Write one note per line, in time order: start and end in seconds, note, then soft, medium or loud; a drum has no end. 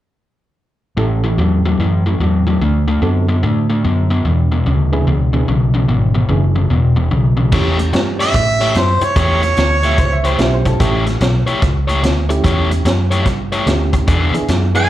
0.97 1.37 A1 medium
0.97 1.21 A2 medium
0.97 1.21 E3 medium
0.97 2.12 C#4 soft
0.97 2.12 E4 soft
0.97 2.12 G4 soft
0.97 2.12 A4 medium
1.24 1.37 A2 medium
1.24 1.37 E3 medium
1.38 1.78 E2 medium
1.38 1.62 A2 medium
1.38 1.62 F#3 medium
1.65 1.78 A2 medium
1.65 1.78 F#3 medium
1.79 2.19 F#2 medium
1.79 2.03 A2 medium
1.79 2.04 E3 medium
2.06 2.19 A2 medium
2.06 2.19 E3 medium
2.20 2.60 E2 medium
2.20 2.44 A2 medium
2.20 2.44 F#3 medium
2.47 2.60 A2 medium
2.47 2.60 F#3 medium
2.61 3.01 D2 medium
2.61 2.85 D3 medium
2.61 2.85 A3 medium
2.88 3.01 D3 medium
2.88 3.01 A3 medium
3.02 3.42 F#2 medium
3.02 3.26 D3 medium
3.02 3.26 B3 medium
3.02 3.26 C4 soft
3.02 3.26 D4 soft
3.02 3.26 F#4 soft
3.02 3.26 A4 medium
3.29 3.42 D3 medium
3.29 3.42 B3 medium
3.43 3.83 A2 medium
3.43 3.67 D3 medium
3.43 3.67 A3 medium
3.70 3.83 D3 medium
3.70 3.83 A3 medium
3.85 4.24 F#2 medium
3.85 4.08 D3 medium
3.85 4.08 B3 medium
4.10 4.24 D3 medium
4.10 4.24 B3 medium
4.25 4.49 E2 medium
4.25 4.65 E2 medium
4.25 4.49 B2 medium
4.52 4.65 E2 medium
4.52 4.65 B2 medium
4.66 5.06 D2 medium
4.66 4.90 E2 medium
4.66 4.90 C#3 medium
4.92 5.06 E2 medium
4.92 5.06 C#3 medium
4.92 5.05 B3 medium
4.92 5.06 D4 medium
4.92 5.06 E4 medium
4.92 5.06 G#4 medium
5.07 5.46 C#2 medium
5.07 5.31 E2 medium
5.07 5.31 B2 medium
5.33 5.46 E2 medium
5.33 5.47 B2 medium
5.33 5.46 B3 soft
5.33 5.47 D4 soft
5.33 5.47 E4 soft
5.33 5.47 G#4 medium
5.48 5.87 B1 medium
5.48 5.72 E2 medium
5.48 5.72 C#3 medium
5.74 5.87 E2 medium
5.74 5.87 C#3 medium
5.88 6.28 G#1 medium
5.88 6.12 E2 medium
5.88 6.12 B2 medium
6.14 6.28 E2 medium
6.14 6.28 B2 medium
6.29 6.69 F#1 medium
6.29 6.53 E2 medium
6.29 6.53 C#3 medium
6.29 6.53 B3 soft
6.29 6.53 D4 soft
6.29 6.53 E4 soft
6.29 6.53 G#4 medium
6.56 6.69 E2 medium
6.56 6.69 C#3 medium
6.70 7.10 E1 medium
6.70 6.94 E2 medium
6.70 6.95 B2 medium
6.96 7.10 E2 medium
6.96 7.10 B2 medium
7.11 7.51 B1 medium
7.11 7.35 E2 medium
7.11 7.35 C#3 medium
7.37 7.50 E2 medium
7.37 7.51 C#3 medium
7.52 7.92 E2 medium
7.52 7.79 A3 medium
7.52 8.66 A3 medium
7.52 8.66 C#4 medium
7.52 7.78 E4 medium
7.52 8.67 E4 medium
7.52 7.78 G4 loud
7.52 8.67 G4 medium
7.52 7.77 C#5 loud
7.52 kick loud
7.52 snare soft
7.52 crash medium
7.78 muted overdriven electric guitar stroke soft
7.78 closed hi-hat medium
7.93 8.33 G2 medium
7.93 muted overdriven electric guitar stroke soft
7.93 snare loud
7.93 closed hi-hat medium
8.20 8.33 A3 medium
8.20 8.33 E4 medium
8.20 8.34 G4 medium
8.20 8.34 C#5 medium
8.20 8.79 E5 loud
8.20 snare soft
8.20 closed hi-hat medium
8.34 8.74 A2 medium
8.34 muted overdriven electric guitar stroke soft
8.34 kick loud
8.34 closed hi-hat medium
8.61 8.74 A3 medium
8.61 8.75 E4 medium
8.61 8.75 G4 medium
8.61 8.75 C#5 medium
8.61 closed hi-hat medium
8.75 9.00 F#2 medium
8.75 9.06 C5 medium
8.75 muted overdriven electric guitar stroke soft
8.75 snare loud
8.75 closed hi-hat medium
9.01 9.17 C#5 medium
9.01 muted fingered electric bass stroke soft
9.01 muted overdriven electric guitar stroke soft
9.01 closed hi-hat medium
9.16 9.56 E2 medium
9.16 9.42 A3 medium
9.16 9.42 E4 medium
9.16 9.42 G4 medium
9.16 9.41 C#5 loud
9.16 10.36 C#5 medium
9.16 kick loud
9.16 snare soft
9.16 closed hi-hat medium
9.43 muted overdriven electric guitar stroke medium
9.43 snare soft
9.43 closed hi-hat medium
9.57 9.97 D2 medium
9.57 muted overdriven electric guitar stroke soft
9.57 snare loud
9.57 closed hi-hat medium
9.83 9.97 A3 medium
9.83 9.97 E4 medium
9.83 9.98 G4 medium
9.83 9.98 C#5 medium
9.83 9.98 E5 medium
9.83 snare soft
9.83 closed hi-hat medium
9.98 10.38 C#2 medium
9.98 10.11 C5 medium
9.98 muted overdriven electric guitar stroke soft
9.98 kick medium
9.98 snare soft
9.98 closed hi-hat medium
10.12 10.25 E5 medium
10.24 10.38 A3 medium
10.24 10.38 E4 medium
10.24 10.38 G4 medium
10.24 10.39 C5 medium
10.24 10.39 C#5 medium
10.24 closed hi-hat medium
10.38 10.79 B1 medium
10.38 10.79 A3 medium
10.38 10.79 C#4 soft
10.38 10.79 E4 medium
10.38 10.79 G4 medium
10.38 10.52 E5 medium
10.38 muted overdriven electric guitar stroke soft
10.38 snare loud
10.38 closed hi-hat medium
10.53 10.66 C5 medium
10.65 10.89 A4 medium
10.65 muted overdriven electric guitar stroke medium
10.65 kick medium
10.65 closed hi-hat soft
10.80 11.20 A1 medium
10.80 11.04 A3 medium
10.80 11.06 A3 medium
10.80 11.04 C#4 medium
10.80 11.06 E4 medium
10.80 11.04 E4 medium
10.80 11.04 G4 medium
10.80 11.06 G4 loud
10.80 11.05 C#5 loud
10.80 kick loud
10.80 snare soft
10.80 closed hi-hat medium
11.06 muted overdriven electric guitar stroke soft
11.06 snare soft
11.06 closed hi-hat medium
11.21 11.45 B1 loud
11.21 muted overdriven electric guitar stroke soft
11.21 snare loud
11.21 closed hi-hat medium
11.47 11.61 A3 medium
11.47 11.61 E4 medium
11.47 11.61 G4 medium
11.47 11.62 C#5 medium
11.47 closed hi-hat medium
11.62 12.02 C#2 medium
11.62 muted overdriven electric guitar stroke soft
11.62 kick loud
11.62 snare soft
11.62 closed hi-hat medium
11.88 12.01 A3 medium
11.88 12.02 E4 medium
11.88 12.02 G4 medium
11.88 12.03 C#5 medium
11.88 closed hi-hat medium
12.03 12.43 D2 medium
12.03 muted overdriven electric guitar stroke soft
12.03 snare loud
12.03 closed hi-hat medium
12.29 12.82 A3 medium
12.29 12.82 C#4 medium
12.29 12.82 E4 medium
12.29 12.82 G4 medium
12.29 muted overdriven electric guitar stroke soft
12.29 closed hi-hat medium
12.44 12.84 E2 medium
12.44 12.70 A3 medium
12.44 12.70 E4 medium
12.44 12.70 G4 medium
12.44 12.69 C#5 loud
12.44 kick loud
12.44 closed hi-hat medium
12.70 muted overdriven electric guitar stroke soft
12.70 closed hi-hat medium
12.85 13.25 F#2 medium
12.85 muted overdriven electric guitar stroke soft
12.85 snare loud
12.85 closed hi-hat medium
13.11 13.25 A3 medium
13.11 13.25 E4 medium
13.11 13.25 G4 medium
13.11 13.26 C#5 medium
13.11 closed hi-hat medium
13.26 13.65 G2 medium
13.26 muted overdriven electric guitar stroke soft
13.26 kick loud
13.26 snare soft
13.26 closed hi-hat medium
13.52 13.66 A3 medium
13.52 13.66 E4 medium
13.52 13.67 G4 medium
13.52 13.67 C#5 medium
13.52 closed hi-hat medium
13.66 14.06 D2 medium
13.66 14.08 A3 medium
13.66 14.08 C#4 soft
13.66 14.08 E4 soft
13.66 14.08 G4 medium
13.66 muted overdriven electric guitar stroke soft
13.66 snare loud
13.66 closed hi-hat medium
13.93 muted overdriven electric guitar stroke medium
13.93 kick medium
13.93 closed hi-hat medium
14.08 14.32 E2 medium
14.08 14.34 E3 loud
14.08 14.34 B3 medium
14.08 14.34 D4 loud
14.08 14.33 G#4 medium
14.08 kick loud
14.08 closed hi-hat medium
14.34 14.72 B3 medium
14.34 14.72 D4 medium
14.34 14.73 E4 medium
14.34 14.73 G#4 medium
14.34 muted fingered electric bass stroke soft
14.34 muted overdriven electric guitar stroke soft
14.34 closed hi-hat medium
14.48 14.88 F#2 medium
14.48 muted overdriven electric guitar stroke soft
14.48 snare loud
14.48 closed hi-hat medium
14.75 14.88 E3 medium
14.75 14.88 B3 medium
14.75 14.89 B3 medium
14.75 14.89 D4 medium
14.75 14.89 E4 medium
14.75 14.89 G#4 medium
14.75 14.89 G#5 loud
14.75 closed hi-hat medium